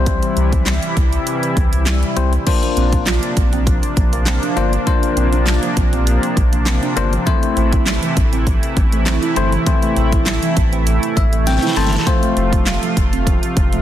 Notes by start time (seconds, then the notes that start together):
Already playing: C2 C3 E3 G3 C4 E4 C5
0.06 kick, closed hi-hat
0.23 closed hi-hat
0.37 C2, closed hi-hat
0.53 kick, closed hi-hat
0.66 snare, clap, closed hi-hat
0.83 closed hi-hat
0.97 C2, kick, closed hi-hat
1.13 closed hi-hat
1.27 closed hi-hat
1.43 closed hi-hat
1.57 C2, kick, closed hi-hat
1.73 C2, closed hi-hat
1.86 snare, clap, closed hi-hat
2.03 closed hi-hat
2.16 C2 G3 C4 E4 C5, closed hi-hat
2.33 closed hi-hat
2.47 C3 F3 A#3 D4 F4 C5, kick, closed hi-hat, crash
2.63 A#3, closed hi-hat
2.77 A#1 C4, closed hi-hat
2.93 D4, kick, closed hi-hat
3.06 F4, snare, clap, closed hi-hat
3.23 F3, closed hi-hat
3.37 A#1, kick, closed hi-hat
3.53 C4, closed hi-hat
3.67 kick, closed hi-hat
3.83 closed hi-hat
3.97 A#1, kick, closed hi-hat
4.13 A#3, closed hi-hat
4.26 C4, snare, clap, closed hi-hat
4.43 D4, closed hi-hat
4.57 G1 A#3 D4 F4 C5, closed hi-hat
4.73 F3, closed hi-hat
4.87 F3 A#3 D4 F4 C5, kick, closed hi-hat
5.03 A#3, closed hi-hat
5.17 A#1 C4, closed hi-hat
5.33 D4, closed hi-hat
5.46 F4, snare, clap, closed hi-hat
5.63 F3, closed hi-hat
5.77 A#1, kick, closed hi-hat
5.93 C4, closed hi-hat
6.07 closed hi-hat
6.23 closed hi-hat
6.37 A#1, kick, closed hi-hat
6.53 A#3, closed hi-hat
6.66 C4, snare, clap, closed hi-hat
6.83 D4, closed hi-hat
6.97 G1 A#3 D4 F4 C5, closed hi-hat
7.13 F3, closed hi-hat
7.26 E3 A3 C4 E4 C5, kick, closed hi-hat
7.43 A3, closed hi-hat
7.57 A1 C4, closed hi-hat
7.73 E4, kick, closed hi-hat
7.86 E5, snare, clap, closed hi-hat
8.03 E3, closed hi-hat
8.17 A1, kick, closed hi-hat
8.33 C4, closed hi-hat
8.47 kick, closed hi-hat
8.63 closed hi-hat
8.77 A1, kick, closed hi-hat
8.92 A3, closed hi-hat
9.06 C4, snare, clap, closed hi-hat
9.23 E4, closed hi-hat
9.36 G1 A3 C4 E4 C5, closed hi-hat
9.52 E3, closed hi-hat
9.66 E3 A3 C4 E4 C5, kick, closed hi-hat
9.83 A3, closed hi-hat
9.97 A1 C4, closed hi-hat
10.12 E4, kick, closed hi-hat
10.26 E5, snare, clap, closed hi-hat
10.43 E3, closed hi-hat
10.57 A1, kick, closed hi-hat
10.73 C4, closed hi-hat
10.87 closed hi-hat
11.03 closed hi-hat
11.17 A1 E5, kick, closed hi-hat
11.33 A3, closed hi-hat
11.47 C4 G5, snare, closed hi-hat
11.57 snare
11.63 E4, closed hi-hat
11.67 snare
11.76 G1 A3 C4 E4 C5 A5, snare, open hi-hat
11.87 snare
11.93 E3, snare, closed hi-hat
12.07 C3 F3 A3 C4 F4 C5, kick, closed hi-hat
12.23 A3, closed hi-hat
12.37 F1 C4, closed hi-hat
12.53 F4, kick, closed hi-hat
12.66 F5, snare, clap, closed hi-hat
12.83 F3, closed hi-hat
12.97 F1, kick, closed hi-hat
13.13 C4, closed hi-hat
13.27 kick, closed hi-hat
13.43 closed hi-hat
13.57 F1, kick, closed hi-hat
13.73 A3, closed hi-hat